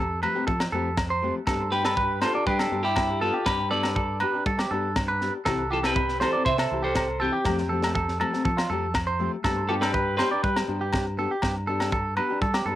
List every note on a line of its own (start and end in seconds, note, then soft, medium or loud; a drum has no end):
0.00 0.25 F2 medium
0.00 0.18 C4 medium
0.00 0.18 G4 medium
0.00 0.21 A4 medium
0.22 0.35 F3 medium
0.22 0.35 A3 medium
0.22 0.35 C4 medium
0.22 0.34 G4 medium
0.22 0.46 B4 medium
0.22 low agogo medium
0.35 0.51 A3 soft
0.35 0.50 C4 soft
0.35 0.50 G4 medium
0.47 0.66 F3 medium
0.47 0.59 A4 medium
0.47 kick medium
0.60 muted clean electric guitar stroke medium
0.60 snare medium
0.60 low agogo medium
0.72 1.30 F2 medium
0.72 0.87 F3 medium
0.72 0.88 A3 medium
0.72 0.89 C4 medium
0.72 0.89 G4 medium
0.72 0.96 A4 medium
0.97 kick medium
0.97 snare medium
0.97 low agogo medium
1.10 1.34 C5 medium
1.22 1.37 F3 medium
1.22 1.38 A3 medium
1.22 1.38 C4 medium
1.22 1.38 G4 medium
1.47 2.24 G2 medium
1.47 1.62 B3 medium
1.47 1.62 D4 medium
1.47 1.63 G4 medium
1.47 1.71 A4 medium
1.47 kick medium
1.47 snare medium
1.47 low agogo medium
1.71 1.84 B3 medium
1.71 1.84 D4 soft
1.71 1.84 G4 medium
1.71 1.82 G4 medium
1.71 1.84 G4 medium
1.71 1.84 B4 medium
1.83 2.00 D4 soft
1.83 1.99 G4 soft
1.83 2.20 G4 medium
1.83 1.96 A4 medium
1.83 2.23 B4 medium
1.83 snare medium
1.83 low agogo medium
1.97 2.21 B4 medium
1.97 kick medium
2.21 2.34 B3 medium
2.21 2.35 D4 medium
2.21 2.46 F4 medium
2.21 2.33 G4 medium
2.21 2.46 A4 medium
2.21 2.34 C5 medium
2.21 snare medium
2.21 low agogo medium
2.34 2.50 D4 soft
2.34 2.49 G4 medium
2.34 2.46 D5 medium
2.46 2.66 G3 medium
2.46 2.82 D4 medium
2.46 2.82 G4 medium
2.46 2.59 B4 medium
2.46 kick medium
2.59 2.84 A4 medium
2.59 snare medium
2.59 low agogo medium
2.71 3.29 G2 medium
2.71 2.87 B3 medium
2.71 2.87 D4 medium
2.71 2.88 G4 medium
2.83 3.19 E4 medium
2.83 3.21 G4 medium
2.83 3.08 G4 medium
2.96 kick medium
2.96 snare medium
2.96 low agogo medium
3.21 3.37 B3 medium
3.21 3.37 D4 medium
3.21 3.45 F4 medium
3.21 3.38 G4 medium
3.21 3.34 A4 medium
3.21 3.45 A4 medium
3.34 3.58 G4 medium
3.46 4.23 G2 medium
3.46 3.70 G4 medium
3.46 3.70 B4 medium
3.46 kick medium
3.46 snare medium
3.46 low agogo medium
3.70 3.84 B3 medium
3.70 3.84 D4 medium
3.70 3.83 G4 medium
3.70 3.95 A4 medium
3.70 5.17 B4 medium
3.70 5.17 D5 medium
3.83 4.00 D4 soft
3.83 3.99 G4 soft
3.83 snare soft
3.83 low agogo medium
3.96 4.20 A4 medium
3.96 kick medium
4.20 4.34 B3 medium
4.20 4.34 D4 medium
4.20 4.33 G4 medium
4.20 4.45 B4 medium
4.20 low agogo medium
4.34 4.50 D4 soft
4.34 4.49 G4 medium
4.46 4.65 G3 medium
4.46 4.59 A4 medium
4.46 kick medium
4.59 4.71 G4 medium
4.59 snare medium
4.59 low agogo medium
4.71 5.29 G2 medium
4.71 4.87 B3 medium
4.71 4.87 D4 medium
4.71 4.88 G4 medium
4.71 4.95 A4 medium
4.96 kick medium
4.96 snare medium
4.96 low agogo medium
5.08 5.32 B4 medium
5.21 5.36 B3 medium
5.21 5.37 D4 medium
5.21 5.37 G4 medium
5.21 snare soft
5.45 6.23 C2 medium
5.45 5.62 E3 medium
5.45 5.62 C4 medium
5.45 5.62 E4 medium
5.45 5.62 G4 medium
5.45 5.69 A4 medium
5.45 kick medium
5.45 snare medium
5.45 low agogo medium
5.71 5.84 E3 medium
5.71 5.85 C4 medium
5.71 5.85 E4 soft
5.71 5.77 F4 medium
5.71 5.83 G4 medium
5.71 5.78 A4 medium
5.83 6.00 C4 soft
5.83 6.00 E4 soft
5.83 5.99 G4 soft
5.83 6.19 G4 medium
5.83 5.95 A4 medium
5.83 6.22 B4 medium
5.83 snare medium
5.83 low agogo medium
5.96 6.20 B4 medium
5.96 kick medium
6.09 snare soft
6.20 6.34 E3 medium
6.20 6.35 C4 medium
6.20 6.35 E4 medium
6.20 6.34 G4 medium
6.20 6.45 A4 medium
6.20 6.32 C5 medium
6.20 6.45 C5 medium
6.20 snare medium
6.20 low agogo medium
6.33 6.50 E4 soft
6.33 6.49 G4 soft
6.33 6.45 D5 medium
6.37 6.50 C4 soft
6.45 6.65 C3 medium
6.45 6.58 C5 medium
6.45 6.81 C5 medium
6.45 6.81 E5 medium
6.45 kick medium
6.58 6.82 A4 medium
6.58 snare medium
6.58 low agogo medium
6.71 7.29 C2 medium
6.71 6.86 E3 soft
6.71 6.87 C4 medium
6.71 6.87 E4 medium
6.71 6.87 G4 medium
6.82 7.07 G4 medium
6.82 7.18 A4 medium
6.82 7.22 C5 medium
6.95 kick medium
6.95 snare medium
6.95 low agogo medium
7.20 7.37 E3 medium
7.20 8.17 C4 medium
7.20 7.37 C4 soft
7.20 7.37 E4 medium
7.20 8.17 G4 medium
7.20 7.37 G4 medium
7.20 7.32 A4 medium
7.33 7.57 G4 medium
7.45 8.22 F2 medium
7.45 7.61 F3 medium
7.45 7.61 A3 medium
7.45 7.62 C4 medium
7.45 7.61 G4 medium
7.45 kick medium
7.45 snare medium
7.45 low agogo medium
7.58 snare soft
7.69 7.83 F3 medium
7.69 7.84 A3 medium
7.69 7.83 C4 soft
7.69 7.83 G4 medium
7.69 7.94 A4 medium
7.83 7.99 A3 soft
7.83 7.98 G4 soft
7.83 muted nylon-string guitar stroke soft
7.83 snare medium
7.83 low agogo medium
7.95 8.19 A4 medium
7.95 kick medium
8.08 snare soft
8.20 8.33 F3 medium
8.20 8.33 A3 medium
8.20 8.33 C4 medium
8.20 8.32 G4 medium
8.20 8.44 A4 medium
8.20 low agogo medium
8.33 8.48 A3 soft
8.33 8.48 C4 medium
8.33 8.48 G4 medium
8.33 snare soft
8.45 8.64 F3 medium
8.45 8.57 A4 medium
8.45 kick medium
8.57 8.69 F4 medium
8.57 snare medium
8.57 low agogo medium
8.70 9.27 F2 medium
8.70 8.85 F3 medium
8.70 8.85 A3 medium
8.70 8.86 C4 medium
8.70 8.86 G4 medium
8.70 8.93 A4 medium
8.94 kick medium
8.94 snare medium
8.94 low agogo medium
9.07 9.31 C5 medium
9.19 9.35 F3 medium
9.19 9.35 A3 medium
9.19 9.35 C4 medium
9.19 9.36 G4 medium
9.44 10.21 G2 medium
9.44 9.59 B3 medium
9.44 9.60 G4 medium
9.44 9.68 A4 medium
9.44 muted nylon-string guitar stroke medium
9.44 kick medium
9.44 snare medium
9.44 low agogo medium
9.69 9.82 B3 soft
9.69 9.81 D4 soft
9.69 9.74 F4 medium
9.69 9.81 G4 medium
9.69 9.80 G4 medium
9.69 9.74 A4 medium
9.81 9.97 D4 soft
9.81 9.96 G4 medium
9.81 10.16 G4 medium
9.81 9.93 A4 medium
9.81 10.16 B4 medium
9.81 snare medium
9.81 low agogo medium
9.94 10.18 B4 medium
9.94 kick medium
10.17 10.31 B3 medium
10.17 10.32 D4 medium
10.17 12.75 G4 medium
10.17 10.30 G4 medium
10.17 12.75 B4 medium
10.17 10.31 C5 medium
10.17 snare medium
10.17 low agogo medium
10.31 10.47 D4 soft
10.31 10.46 G4 soft
10.31 10.43 D5 medium
10.43 10.63 G3 medium
10.43 10.56 B4 medium
10.43 kick medium
10.56 snare medium
10.56 low agogo medium
10.67 11.26 G2 medium
10.67 10.83 B3 soft
10.67 10.84 D4 medium
10.67 10.84 G4 medium
10.81 11.05 G4 medium
10.93 kick medium
10.93 snare medium
10.93 low agogo medium
11.18 11.33 B3 medium
11.18 11.34 D4 medium
11.18 11.34 G4 medium
11.18 11.30 A4 medium
11.31 11.54 G4 medium
11.42 12.19 G2 medium
11.42 kick medium
11.42 snare medium
11.42 low agogo medium
11.67 11.80 B3 medium
11.67 11.81 D4 medium
11.67 11.79 G4 medium
11.67 11.91 A4 medium
11.80 11.96 D4 soft
11.80 11.95 G4 soft
11.80 snare medium
11.80 low agogo medium
11.92 12.16 A4 medium
11.92 kick medium
12.17 12.30 B3 medium
12.17 12.30 D4 medium
12.17 12.29 G4 medium
12.17 12.40 B4 medium
12.17 low agogo medium
12.30 12.45 D4 soft
12.30 12.44 G4 medium
12.41 12.60 G3 medium
12.41 12.54 A4 medium
12.41 kick medium
12.54 12.65 G4 medium
12.54 snare medium
12.54 low agogo medium
12.65 12.75 G2 medium
12.65 12.75 B3 medium
12.65 12.75 D4 medium
12.65 12.75 G4 medium
12.65 12.75 A4 medium